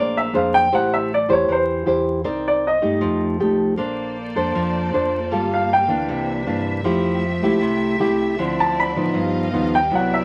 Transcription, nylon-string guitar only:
0.00 0.71 A#3 medium
0.00 0.31 D4 medium
0.00 0.31 G#4 medium
0.00 0.31 C5 medium
0.33 0.71 D4 medium
0.33 0.71 G#4 medium
0.33 0.71 C5 medium
0.72 1.47 A3 medium
0.72 1.10 E4 medium
0.72 1.11 G4 soft
0.72 1.11 C5 medium
1.29 1.84 E4 medium
1.29 1.84 G4 medium
1.29 1.84 C5 medium
1.48 2.23 E3 medium
1.86 2.22 E4 medium
1.86 2.22 G4 medium
1.86 2.23 C5 medium
2.24 2.82 C4 medium
2.24 2.63 D#4 medium
2.24 2.63 A#4 medium
2.24 2.64 D5 medium
2.82 3.37 A3 medium
2.82 3.37 D#4 medium
2.82 3.38 G4 medium
3.01 3.76 F3 medium
3.40 3.76 A3 medium
3.40 3.76 D#4 medium
3.40 3.76 G4 medium
3.77 4.53 A#3 medium
3.77 4.17 D4 medium
3.77 4.17 A4 medium
3.77 4.17 C5 soft
4.36 4.91 D4 medium
4.36 4.91 A4 medium
4.36 4.91 C5 medium
4.55 5.30 F3 medium
4.93 5.18 D4 medium
4.93 5.19 A4 medium
4.93 5.19 C5 medium
5.31 5.88 G3 medium
5.31 5.70 A#3 medium
5.31 5.70 F4 medium
5.31 5.70 A4 medium
5.88 6.43 E3 medium
5.88 6.44 A#3 medium
5.88 6.44 D4 medium
6.08 6.83 C3 medium
6.46 6.82 E3 medium
6.46 6.82 A#3 medium
6.46 6.82 D4 medium
6.84 7.60 F3 medium
6.84 7.23 A3 medium
6.84 7.23 E4 medium
6.84 7.24 G4 medium
7.43 7.97 A3 medium
7.43 7.98 E4 medium
7.43 7.98 G4 medium
7.62 8.37 C3 medium
8.00 8.35 A3 medium
8.00 8.35 E4 medium
8.00 8.36 G4 medium
8.38 9.13 D3 medium
8.38 8.93 F3 medium
8.38 8.93 C4 medium
8.38 8.93 E4 medium
8.96 9.50 F3 medium
8.96 9.51 B3 medium
8.96 9.51 D#4 medium
9.14 9.89 G2 medium
9.53 9.78 F3 medium
9.53 9.78 B3 medium
9.53 9.78 D#4 medium
9.91 10.24 C3 medium
9.91 10.24 F#3 medium
9.91 10.24 B3 soft
9.91 10.24 E4 medium

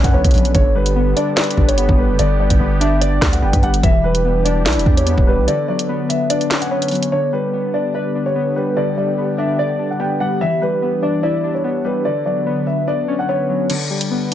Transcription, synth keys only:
0.00 0.55 D3 medium
0.00 0.14 F#3 medium
0.00 0.12 B3 medium
0.00 0.55 C#4 medium
0.00 0.55 D4 medium
0.14 0.55 B3 medium
0.34 0.55 F#3 medium
0.55 1.58 D3 medium
0.75 1.78 G3 medium
0.96 1.77 B3 medium
1.17 1.56 D4 medium
1.37 2.40 B4 medium
1.58 2.60 D4 medium
1.78 2.59 B3 medium
1.99 2.38 G3 medium
2.19 3.22 D3 medium
2.39 3.42 G3 medium
2.60 3.41 B3 medium
2.80 3.21 D4 loud
3.01 3.83 D5 medium
3.22 3.83 D4 medium
3.42 3.83 B3 medium
3.63 3.84 G3 medium
3.83 4.86 E3 medium
4.04 5.07 G3 medium
4.25 5.05 B3 medium
4.45 4.85 D4 loud
4.66 5.48 E4 medium
4.86 5.48 D4 medium
5.07 5.48 B3 medium
5.27 5.48 G3 medium
5.48 6.51 D3 medium
5.68 6.71 F#3 medium
5.89 6.70 B3 medium
6.30 7.12 D4 medium
6.50 7.12 C#4 medium
6.71 7.12 B3 medium
6.92 7.12 F#3 medium
7.12 8.15 D3 medium
7.33 8.35 G3 medium
7.53 8.34 B3 medium
7.74 8.14 D4 medium
7.95 8.97 B4 medium
8.15 9.18 D4 medium
8.35 9.17 B3 medium
8.56 8.96 G3 medium
8.77 9.79 D3 medium
8.97 10.00 G3 medium
9.18 9.98 B3 medium
9.38 9.78 D4 medium
9.59 10.41 D5 medium
9.79 10.41 D4 medium
10.00 10.41 B3 medium
10.21 10.41 G3 medium
10.41 11.44 E3 medium
10.61 11.64 G3 medium
10.82 11.63 B3 medium
11.03 11.43 D4 loud
11.23 12.05 E4 medium
11.44 12.05 D4 medium
11.64 12.05 B3 medium
11.85 12.05 G3 medium
12.05 13.08 D3 medium
12.26 13.29 F#3 medium
12.46 13.28 B3 medium
12.87 13.70 D4 medium
13.08 13.70 C#4 medium
13.29 13.70 B3 medium
13.49 13.70 F#3 medium
13.70 14.34 D3 medium
13.90 14.34 G3 medium
14.11 14.34 B3 medium

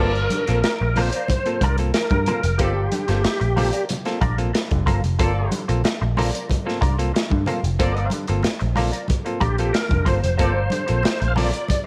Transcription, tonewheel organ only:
0.00 1.01 A#4 loud
0.97 1.29 C5 medium
1.30 1.63 C5 loud
1.62 1.76 A#4 medium
1.94 2.61 A#4 loud
2.58 3.85 G4 medium
9.41 9.75 G4 medium
9.73 10.07 A#4 loud
10.07 11.34 C5 medium
11.28 11.36 F5 medium
11.37 11.68 D5 loud
11.69 11.84 D5 loud

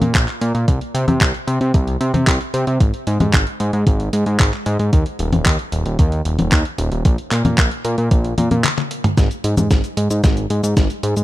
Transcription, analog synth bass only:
0.01 0.13 A#2 medium
0.15 0.26 A#1 loud
0.41 0.53 A#2 loud
0.55 0.66 A#2 medium
0.68 0.79 C2 loud
0.94 1.06 C3 loud
1.08 1.19 C3 medium
1.21 1.32 C2 medium
1.47 1.59 C3 medium
1.61 1.72 C3 medium
1.74 1.97 C2 medium
2.01 2.12 C3 medium
2.14 2.25 C3 medium
2.27 2.39 C2 loud
2.54 2.65 C3 medium
2.67 2.79 C3 medium
2.80 2.92 G#1 medium
3.07 3.18 G#2 loud
3.20 3.32 G#2 medium
3.34 3.45 G#1 medium
3.60 3.71 G#2 medium
3.73 3.85 G#2 medium
3.87 4.09 G#1 medium
4.13 4.24 G#2 medium
4.26 4.38 G#2 medium
4.40 4.51 G#1 loud
4.66 4.78 G#2 loud
4.79 4.91 G#2 medium
4.93 5.04 D#2 loud
5.19 5.31 D#1 loud
5.32 5.44 D#1 medium
5.46 5.57 D#2 medium
5.72 5.84 D#1 medium
5.86 5.97 D#1 medium
5.99 6.22 D#2 medium
6.25 6.37 D#1 medium
6.39 6.50 D#1 medium
6.52 6.63 D#2 loud
6.78 6.90 D#1 loud
6.92 7.03 D#1 medium
7.05 7.17 A#1 loud
7.31 7.43 A#2 loud
7.45 7.56 A#2 medium
7.58 7.70 A#1 medium
7.85 7.96 A#2 medium
7.98 8.09 A#2 medium
8.11 8.34 A#1 medium
8.38 8.49 A#2 medium
8.51 8.63 A#2 medium
9.18 9.29 G#1 loud
9.44 9.55 G#2 loud
9.57 9.69 G#2 medium
9.71 9.82 G#1 medium
9.97 10.08 G#2 medium
10.10 10.22 G#2 medium
10.24 10.46 G#1 medium
10.50 10.62 G#2 medium
10.63 10.75 G#2 medium
10.77 10.88 G#1 loud
11.03 11.15 G#2 loud
11.17 11.24 G#2 medium

